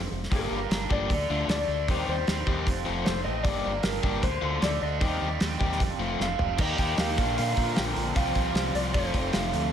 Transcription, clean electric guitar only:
0.35 0.94 A#4 medium
0.92 1.49 D5 medium
1.50 1.90 D5 medium
1.91 2.08 C5 medium
2.09 2.83 C5 loud
3.05 3.24 C5 loud
3.25 3.43 D#5 loud
3.43 3.85 D5 loud
3.83 4.24 A#4 medium
4.23 4.63 C5 medium
4.63 4.82 D5 medium
4.83 5.57 D#5 loud
6.22 6.61 F5 medium
6.61 6.79 D#5 medium
6.79 6.99 G5 loud
7.00 7.37 F5 loud
7.38 7.78 F5 medium
7.78 8.16 G5 medium
8.16 8.78 F5 medium
8.75 8.81 D5 medium
8.93 9.35 C5 medium
9.34 9.71 F5 medium

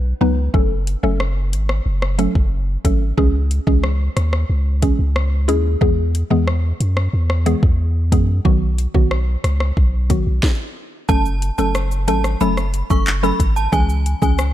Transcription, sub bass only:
0.00 0.14 B1 medium
0.21 0.49 C#2 loud
0.54 0.96 F#1 loud
1.03 1.54 F#1 loud
1.53 1.81 G#1 medium
1.86 2.28 F#1 loud
2.35 2.77 F#1 medium
2.85 3.13 G#1 loud
3.18 3.60 C#2 loud
3.67 4.09 C#2 medium
4.17 4.45 D#2 medium
4.50 4.92 C#2 loud
4.99 5.50 C#2 medium
5.48 5.77 D#2 medium
5.82 6.24 E2 loud
6.31 6.73 E2 medium
6.80 7.08 F#2 loud
7.13 7.55 E2 loud
7.63 8.14 E2 medium
8.12 8.40 F#2 loud
8.45 8.87 B1 loud
8.95 9.37 B1 medium
9.44 9.72 C#2 medium
9.77 10.19 B1 loud
10.27 10.41 B1 medium
11.09 11.51 F#1 loud
11.58 12.09 F#1 loud
12.08 12.36 G#1 loud
12.41 12.83 F#1 loud
12.90 13.32 F#1 medium
13.40 13.68 G#1 medium
13.73 14.15 C#2 loud
14.22 14.53 C#2 medium

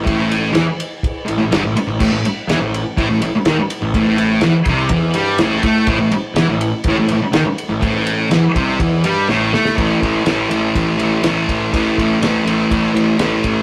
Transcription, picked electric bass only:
0.07 0.51 A1 medium
0.54 0.65 E2 medium
1.28 1.39 A1 medium
1.40 1.51 A1 medium
1.52 1.63 G1 loud
1.64 1.75 A1 medium
1.76 muted picked electric bass stroke soft
1.87 1.99 A1 medium
2.00 2.10 A1 medium
2.11 2.22 A1 medium
2.23 muted picked electric bass stroke soft
2.47 2.58 E2 loud
2.59 2.82 A1 medium
2.98 3.07 A1 loud
3.08 3.20 A1 medium
3.21 3.32 A1 medium
3.32 muted picked electric bass stroke soft
3.45 3.56 D#2 medium
3.57 muted picked electric bass stroke soft
3.82 3.93 A1 medium
3.94 4.39 A1 medium
4.42 4.53 E2 loud
4.67 4.89 C2 medium
4.90 5.13 E2 loud
5.15 5.37 G2 loud
5.37 5.61 A1 medium
5.64 5.86 A2 loud
5.87 5.98 A1 medium
5.98 6.10 A1 medium
6.11 muted picked electric bass stroke soft
6.34 6.46 E2 loud
6.47 6.70 A1 medium
6.85 6.95 A1 loud
6.95 7.07 A1 medium
7.09 7.19 A1 medium
7.20 muted picked electric bass stroke soft
7.32 7.44 D#2 medium
7.45 muted picked electric bass stroke soft
7.69 7.81 A1 medium
7.83 8.28 A1 loud
8.31 8.42 E2 medium
8.56 8.78 C2 loud
8.80 9.02 E2 loud
9.04 9.27 G2 medium
9.29 9.51 A1 medium
9.52 9.75 A2 medium
9.78 9.94 A1 medium
10.03 10.19 A1 medium
10.27 10.43 A1 medium
10.51 10.67 A1 medium
10.76 10.92 A1 medium
10.98 11.15 A1 medium
11.22 11.39 A1 medium
11.49 11.65 A1 medium
11.73 11.89 A1 medium
11.98 12.14 A1 medium
12.21 12.38 A1 medium
12.46 12.62 A1 medium
12.71 12.87 A1 medium
12.94 13.11 A1 medium
13.18 13.35 A1 medium
13.45 13.61 A1 medium

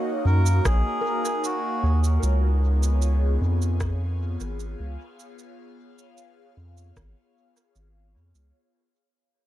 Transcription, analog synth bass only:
0.25 0.60 F#2 loud
0.65 0.83 A#1 medium
1.83 2.18 D#2 loud
2.23 3.38 C#2 loud
3.41 4.37 F2 loud
4.40 4.75 G#1 medium
4.80 4.97 C#2 medium
6.57 6.92 F2 loud
6.97 7.14 G#1 medium
7.76 8.17 G#1 medium
8.15 8.33 F2 medium
8.35 8.52 C#2 medium

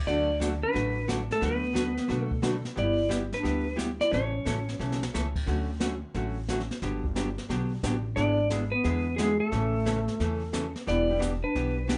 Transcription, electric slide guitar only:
0.07 0.39 D5 loud
0.63 1.06 B4 loud
1.32 1.44 A4 medium
1.45 2.26 B4 medium
2.26 2.63 A4 medium
2.79 3.09 D5 loud
3.34 3.76 B4 medium
4.01 4.13 D5 medium
4.14 5.32 C#5 medium
8.16 8.48 D5 loud
8.72 9.20 B4 loud
9.16 9.40 G#4 medium
9.40 10.72 A4 medium
10.88 11.20 D5 loud
11.44 11.86 B4 medium

